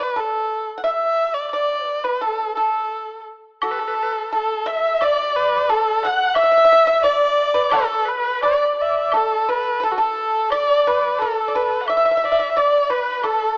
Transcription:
0.00 B4
0.16 A4
0.20 A4
0.78 F#5
0.84 E5
1.34 D5
1.51 D5
1.85 B4
2.04 B4
2.21 A4
2.55 A4
3.62 F#4 A4, high woodblock
3.71 B4
3.79 A4
3.84 A4 B4
3.94 A4
4.03 B4
4.12 A4
4.32 A4
4.66 E5
5.01 D5, high woodblock
5.36 B4
5.69 A4
6.03 F#5
6.34 E5, high woodblock
6.38 E5
6.43 E5
6.52 E5
6.57 E5
6.65 E5
6.72 E5
6.87 E5
7.02 D5
7.54 B4
7.70 A4, high woodblock
8.05 B4
8.41 D5, high woodblock, low woodblock
8.81 E5
9.12 A4, high woodblock
9.17 A4
9.49 B4
9.80 A4 B4
9.84 A4
9.92 F#4
9.97 A4
10.50 D5, high woodblock
10.87 B4
11.19 A4
11.48 D5
11.55 B4
11.81 F#5
11.86 E5, high woodblock
11.97 E5
12.05 E5
12.11 E5
12.17 E5
12.24 D5 E5
12.32 E5
12.39 E5
12.51 E5
12.56 D5
12.89 B4
13.23 A4, high woodblock

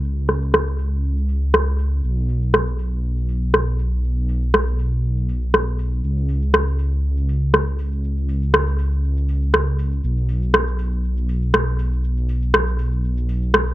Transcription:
Already playing: C#2
0.04 shaker
0.17 shaker
0.29 cross-stick, open hi-hat, shaker
0.42 shaker
0.54 cross-stick, shaker
0.67 shaker
0.79 open hi-hat, shaker
0.92 shaker
1.04 shaker
1.17 shaker
1.29 open hi-hat, shaker
1.42 shaker
1.54 cross-stick, shaker
1.67 shaker
1.79 open hi-hat, shaker
1.92 shaker
2.04 B1, shaker
2.17 shaker
2.29 open hi-hat, shaker
2.42 shaker
2.54 cross-stick, shaker
2.67 shaker
2.79 open hi-hat, shaker
2.92 shaker
3.04 shaker
3.17 shaker
3.29 open hi-hat, shaker
3.42 shaker
3.54 cross-stick, shaker
3.67 shaker
3.79 open hi-hat, shaker
3.92 shaker
4.04 shaker
4.17 shaker
4.29 open hi-hat, shaker
4.42 shaker
4.54 cross-stick, shaker
4.67 shaker
4.79 open hi-hat, shaker
4.92 shaker
5.04 shaker
5.17 shaker
5.29 open hi-hat, shaker
5.42 shaker
5.54 cross-stick, shaker
5.67 shaker
5.79 open hi-hat, shaker
5.92 shaker
6.04 C#2, shaker
6.17 shaker
6.29 open hi-hat, shaker
6.42 shaker
6.54 cross-stick, shaker
6.67 shaker
6.79 open hi-hat, shaker
6.92 shaker
7.04 shaker
7.17 shaker
7.29 open hi-hat, shaker
7.42 shaker
7.54 cross-stick, shaker
7.67 shaker
7.79 open hi-hat, shaker
7.92 shaker
8.04 shaker
8.17 shaker
8.29 open hi-hat, shaker
8.42 shaker
8.54 cross-stick, shaker
8.67 shaker
8.79 open hi-hat, shaker
8.92 shaker
9.04 shaker
9.17 shaker
9.29 open hi-hat, shaker
9.42 shaker
9.54 cross-stick, shaker
9.67 shaker
9.79 open hi-hat, shaker
9.92 shaker
10.04 B1, shaker
10.17 shaker
10.29 open hi-hat, shaker
10.42 shaker
10.54 cross-stick, shaker
10.67 shaker
10.79 open hi-hat, shaker
10.92 shaker
11.04 shaker
11.17 shaker
11.29 open hi-hat, shaker
11.42 shaker
11.54 cross-stick, shaker
11.67 shaker
11.79 open hi-hat, shaker
11.92 shaker
12.04 shaker
12.17 shaker
12.29 open hi-hat, shaker
12.42 shaker
12.54 cross-stick, shaker
12.67 shaker
12.79 open hi-hat, shaker
12.92 shaker
13.04 shaker
13.17 shaker
13.29 open hi-hat, shaker
13.42 shaker
13.54 cross-stick, shaker
13.67 shaker

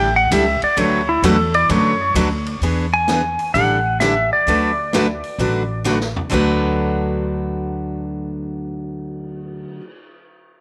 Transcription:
Already playing: A1 G5
0.16 F#5
0.31 C#2 D3 G3 D4 E4 A4 E5, hi-hat pedal, ride
0.62 D5, muted upright bass stroke, ride
0.77 D2 D3 F#3 A3 D4 F#4 B4 C#5, ride
1.09 E4
1.22 E2 D3 F#3 A3 D4 F#4 A4 B4, hi-hat pedal, ride
1.54 D5, ride
1.69 F#2 D3 F#3 A3 D4 F#4 B4 C#5, ride
2.14 D2 D3 F#3 A3 D4 F#4 B4, hi-hat pedal, ride
2.46 ride
2.61 E2 E3 B3 D4 G#4, open hi-hat
2.94 G#5
3.08 E3 B3 D4 G#4, snare, closed hi-hat
3.39 open hi-hat
3.54 A1 D3 G3 D4 E4 A4 F#5, open hi-hat
4.00 D3 G3 D4 E4 A4 E5, snare, closed hi-hat
4.33 D5
4.46 D2 D3 F#3 A3 D4 F#4 B4, open hi-hat
4.93 D3 F#3 A3 D4 F#4 B4, snare, closed hi-hat
5.24 open hi-hat
5.38 A1 D3 F#3 A3 D4 F#4 B4, open hi-hat
5.84 D3 F#3 A3 D4 F#4 B4, snare
6.01 snare
6.16 floor tom
6.30 D2 D3 F#3 A3 D4 F#4, kick, crash
6.34 B4
6.63 cymbal swell

